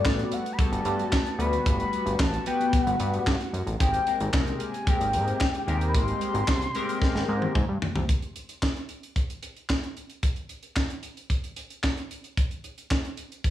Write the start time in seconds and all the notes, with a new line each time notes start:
Already playing: G3 A3 B3 F#4 D5
0.05 A1 G3 B3 F#4 A4, kick, snare, clap
0.19 closed hi-hat
0.32 F#5, closed hi-hat
0.46 closed hi-hat
0.52 B5
0.58 G3 B3 F#4 A4 A5, kick, closed hi-hat
0.72 G1, closed hi-hat
0.85 G2, closed hi-hat
0.99 closed hi-hat
1.12 kick, snare, clap
1.26 closed hi-hat
1.39 D2 G3 B3 F#4 B4 B5, closed hi-hat
1.53 closed hi-hat
1.66 G1 B5, kick, closed hi-hat
1.80 closed hi-hat
1.93 closed hi-hat
2.06 G1, closed hi-hat
2.19 A1 A5, kick, snare, clap
2.34 closed hi-hat
2.46 G3 B3 F#4 B4 G5, closed hi-hat
2.61 closed hi-hat
2.73 F#5, kick, closed hi-hat
2.86 G1, closed hi-hat
3.00 G2, closed hi-hat
3.14 closed hi-hat
3.27 G2, kick, snare, clap
3.40 closed hi-hat
3.53 F#2, closed hi-hat
3.66 A1, closed hi-hat
3.80 G#1 C3 G#3 A#3 C4 G4 A#4 G5, kick, closed hi-hat
3.94 closed hi-hat
4.07 G#3 C4 G4 A#4, closed hi-hat
4.20 G#1, closed hi-hat
4.33 C2 G#3 C4 G4 A#4, kick, snare, clap
4.47 closed hi-hat
4.54 G5
4.60 G#5, closed hi-hat
4.74 closed hi-hat
4.87 G#3 C4 G4 A#4 G5, kick, closed hi-hat
5.01 G#1, closed hi-hat
5.13 G#2, closed hi-hat
5.28 closed hi-hat
5.41 kick, snare, clap
5.55 closed hi-hat
5.67 D#2 G#3 C4 G4 A#4, closed hi-hat
5.81 closed hi-hat
5.88 B5
5.94 G#1 C6, kick, closed hi-hat
6.08 closed hi-hat
6.21 closed hi-hat
6.34 G#1, closed hi-hat
6.48 C2, kick, snare, clap
6.62 closed hi-hat
6.75 G#3 C4 G4 A#4, closed hi-hat
6.89 closed hi-hat
7.02 kick, snare
7.15 G#1, snare
7.28 G#2
7.42 high tom
7.55 G#2, kick, mid tom
7.69 G2
7.82 floor tom
7.95 C2, floor tom
8.09 kick, closed hi-hat
8.22 closed hi-hat
8.36 closed hi-hat
8.49 closed hi-hat
8.62 kick, snare, clap
8.76 closed hi-hat
8.89 closed hi-hat
9.03 closed hi-hat
9.16 kick, closed hi-hat
9.30 closed hi-hat
9.43 closed hi-hat
9.56 closed hi-hat
9.69 kick, snare, clap
9.83 closed hi-hat
9.97 closed hi-hat
10.10 closed hi-hat
10.23 kick, closed hi-hat
10.36 closed hi-hat
10.49 closed hi-hat
10.63 closed hi-hat
10.76 kick, snare, clap
10.90 closed hi-hat
11.03 closed hi-hat
11.17 closed hi-hat
11.30 kick, closed hi-hat
11.44 closed hi-hat
11.56 closed hi-hat
11.70 closed hi-hat
11.83 kick, snare, clap
11.97 closed hi-hat
12.11 closed hi-hat
12.24 closed hi-hat
12.37 kick, closed hi-hat
12.51 closed hi-hat
12.64 closed hi-hat
12.78 closed hi-hat
12.91 kick, snare, clap
13.05 closed hi-hat
13.17 closed hi-hat
13.32 closed hi-hat
13.44 kick, closed hi-hat